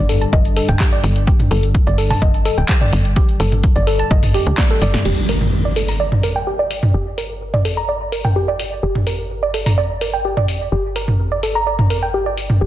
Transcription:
0.00 0.26 G1 medium
0.00 5.10 G2 medium
0.00 5.10 D3 medium
0.09 0.21 A4 medium
0.09 open hi-hat loud
0.21 0.29 A5 medium
0.21 closed hi-hat soft
0.33 0.61 G1 medium
0.33 0.41 D#5 medium
0.33 kick loud
0.33 closed hi-hat medium
0.45 closed hi-hat soft
0.56 0.65 A4 medium
0.56 open hi-hat loud
0.69 0.76 D1 medium
0.69 0.76 G5 medium
0.69 closed hi-hat soft
0.69 mid tom medium
0.80 0.88 G4 medium
0.80 kick loud
0.80 clap loud
0.80 closed hi-hat medium
0.92 1.03 D5 medium
0.92 closed hi-hat soft
1.04 1.32 G1 loud
1.04 open hi-hat loud
1.16 closed hi-hat soft
1.27 1.39 G4 medium
1.27 kick loud
1.27 closed hi-hat medium
1.40 closed hi-hat soft
1.40 mid tom medium
1.51 1.80 G1 loud
1.51 1.63 A4 medium
1.51 open hi-hat loud
1.63 closed hi-hat soft
1.74 kick loud
1.74 closed hi-hat medium
1.87 2.15 G1 medium
1.87 1.98 D5 medium
1.87 closed hi-hat soft
1.98 2.10 A4 medium
1.98 open hi-hat loud
2.10 2.18 A5 medium
2.10 mid tom medium
2.10 open hi-hat medium
2.22 2.50 G1 medium
2.22 2.30 D#5 medium
2.22 kick loud
2.22 closed hi-hat medium
2.34 closed hi-hat soft
2.45 2.54 A4 medium
2.45 open hi-hat loud
2.58 2.65 D1 medium
2.58 2.65 G5 medium
2.58 closed hi-hat soft
2.69 2.77 G4 medium
2.69 kick loud
2.69 clap loud
2.69 closed hi-hat medium
2.81 2.92 D5 medium
2.81 closed hi-hat soft
2.81 mid tom medium
2.93 3.21 G1 loud
2.93 open hi-hat loud
3.05 closed hi-hat soft
3.16 3.28 G4 medium
3.16 kick loud
3.16 closed hi-hat medium
3.29 closed hi-hat soft
3.40 3.69 G1 loud
3.40 3.52 A4 medium
3.40 open hi-hat loud
3.52 closed hi-hat soft
3.52 mid tom medium
3.63 kick loud
3.63 closed hi-hat medium
3.76 4.04 G1 medium
3.76 3.87 D5 medium
3.76 closed hi-hat soft
3.87 3.99 A4 medium
3.87 open hi-hat loud
3.99 4.07 A5 medium
3.99 closed hi-hat soft
4.11 4.39 G1 loud
4.11 4.19 D#5 medium
4.11 kick loud
4.11 closed hi-hat medium
4.23 mid tom medium
4.23 open hi-hat medium
4.34 4.39 G4 medium
4.34 open hi-hat loud
4.47 4.54 D2 loud
4.47 4.51 G4 medium
4.47 closed hi-hat soft
4.58 4.66 D5 medium
4.58 kick loud
4.58 snare loud
4.58 clap loud
4.58 closed hi-hat medium
4.70 4.81 A4 medium
4.70 closed hi-hat soft
4.82 4.97 G1 medium
4.82 4.90 D5 medium
4.82 open hi-hat loud
4.94 snare medium
4.94 closed hi-hat soft
4.94 mid tom medium
5.05 6.92 G1 medium
5.05 5.17 G4 medium
5.05 crash medium
5.05 impact medium
5.29 5.41 A#4 medium
5.29 open hi-hat medium
5.41 mid tom medium
5.65 5.76 D5 medium
5.76 5.88 A4 medium
5.76 open hi-hat medium
5.88 5.96 A#5 medium
5.88 open hi-hat medium
6.00 6.08 D5 medium
6.12 mid tom medium
6.23 6.32 A#4 medium
6.23 open hi-hat medium
6.36 6.43 G5 medium
6.47 6.55 G4 medium
6.59 6.70 D5 medium
6.71 open hi-hat medium
6.83 mid tom medium
6.94 8.81 G1 medium
6.94 7.06 G4 medium
7.18 7.30 A#4 medium
7.18 open hi-hat loud
7.54 7.65 D5 medium
7.54 mid tom medium
7.65 7.77 A4 medium
7.65 open hi-hat medium
7.77 7.85 A#5 medium
7.89 7.97 D5 medium
8.12 8.20 A#4 medium
8.12 open hi-hat loud
8.25 8.32 G5 medium
8.25 mid tom medium
8.36 8.44 G4 medium
8.48 8.59 D5 medium
8.59 open hi-hat medium
8.83 10.70 G1 medium
8.83 8.95 G4 medium
8.95 mid tom medium
9.07 9.18 A#4 medium
9.07 open hi-hat loud
9.43 9.54 D5 medium
9.54 9.66 A4 medium
9.54 open hi-hat loud
9.66 9.74 A#5 medium
9.66 mid tom medium
9.66 open hi-hat medium
9.78 9.86 D5 medium
10.01 10.09 A#4 medium
10.01 open hi-hat loud
10.13 10.21 G5 medium
10.25 10.33 G4 medium
10.37 10.48 D5 medium
10.37 mid tom medium
10.48 open hi-hat loud
10.72 12.59 G1 medium
10.72 10.84 G4 medium
10.96 11.08 A#4 medium
10.96 open hi-hat loud
11.08 mid tom medium
11.32 11.43 D5 medium
11.43 11.55 A4 medium
11.43 open hi-hat loud
11.55 11.63 A#5 medium
11.67 11.75 D5 medium
11.79 mid tom medium
11.90 11.98 A#4 medium
11.90 open hi-hat loud
12.03 12.10 G5 medium
12.14 12.22 G4 medium
12.26 12.37 D5 medium
12.38 open hi-hat medium
12.50 mid tom medium
12.61 12.67 G1 medium
12.61 12.67 G4 medium

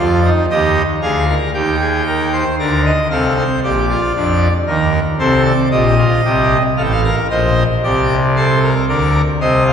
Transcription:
0.00 0.30 F2 medium
0.00 0.30 F3 medium
0.00 0.20 F4 medium
0.00 0.30 D5 medium
0.24 0.46 D#4 medium
0.50 0.82 D#2 medium
0.50 0.82 D#3 medium
0.50 0.82 G4 medium
0.50 0.82 D#5 medium
1.02 1.34 D2 medium
1.02 1.34 D3 medium
1.02 1.24 G#4 medium
1.02 1.34 F5 medium
1.28 1.50 A#4 medium
1.54 2.44 D#2 medium
1.54 2.44 D#3 medium
1.54 1.76 G4 medium
1.54 2.44 G5 medium
1.81 2.03 G#4 medium
2.07 2.29 A#4 medium
2.33 2.55 C5 medium
2.59 2.91 D2 medium
2.59 2.91 D3 medium
2.59 2.91 A#4 medium
2.59 2.82 D5 medium
2.85 3.08 D#5 medium
3.11 3.43 C2 medium
3.11 3.43 C3 medium
3.11 3.43 A4 medium
3.11 3.33 F5 medium
3.37 3.60 C5 medium
3.63 3.96 A#1 medium
3.63 3.96 A#2 medium
3.63 3.86 G4 medium
3.63 4.53 D5 medium
3.90 4.12 F4 medium
4.15 4.48 F2 medium
4.15 4.48 F3 medium
4.15 4.48 D4 medium
4.67 5.00 D#2 medium
4.67 5.00 D#3 medium
4.67 5.00 A#4 medium
5.19 5.52 C2 medium
5.19 5.52 C3 medium
5.19 5.52 A4 medium
5.19 5.42 C5 medium
5.45 5.68 D5 medium
5.71 6.05 A#1 medium
5.71 6.04 A#2 medium
5.71 5.94 G4 medium
5.71 6.63 D#5 medium
5.98 6.21 F4 medium
6.25 6.58 C2 medium
6.25 6.58 C3 medium
6.25 6.58 G4 medium
6.77 7.11 A1 medium
6.77 7.10 A2 medium
6.77 7.01 A4 medium
6.77 6.82 F5 medium
6.84 6.92 G5 medium
6.92 7.16 F5 medium
7.04 7.27 A#4 medium
7.30 7.63 A#1 medium
7.30 7.63 A#2 medium
7.30 7.63 C5 medium
7.30 7.63 D#5 medium
7.83 8.74 C2 medium
7.83 8.74 C3 medium
7.83 8.16 G4 medium
7.83 8.16 D5 medium
8.36 8.69 A4 medium
8.36 8.59 C5 medium
8.63 8.85 A#4 medium
8.89 9.21 D2 medium
8.89 9.21 D3 medium
8.89 9.21 A#4 medium
8.89 9.21 D5 medium
9.41 9.73 C2 medium
9.41 9.73 C3 medium
9.41 9.73 C5 medium
9.41 9.64 D#5 medium
9.66 9.73 F5 medium

